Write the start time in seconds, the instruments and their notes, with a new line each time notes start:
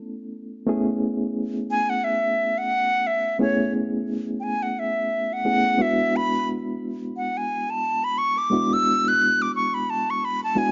Already playing: reed electric piano A3 B3 C#4 E4 A4
0.67 reed electric piano A3 B3 C#4 E4 G#4
1.71 flute G#5
1.90 flute F#5
2.04 flute E5
2.58 flute F#5
3.07 flute E5
3.39 reed electric piano A3 B3 C#4 E4 G#4, flute C#5
4.40 flute G5 G#5
4.63 flute F#5
4.79 flute E5
5.33 flute F#5
5.45 reed electric piano A3 B3 C#4 E4 G#4
5.78 reed electric piano G#3 B3 D4 E4 F#4
5.82 flute E5
6.16 flute B5
7.17 flute F#5
7.37 flute G#5
7.70 flute A5
8.04 flute B5
8.18 flute C#6
8.38 flute D6
8.50 reed electric piano G#3 B3 D4 E4 F#4
8.73 flute E6
9.08 flute F#6
9.42 flute D6
9.55 flute C#6
9.74 flute B5
9.90 flute A5
10.10 flute C#6
10.25 flute B5
10.44 flute A5
10.55 reed electric piano G#3 B3 D4 E4 F#4, flute G#5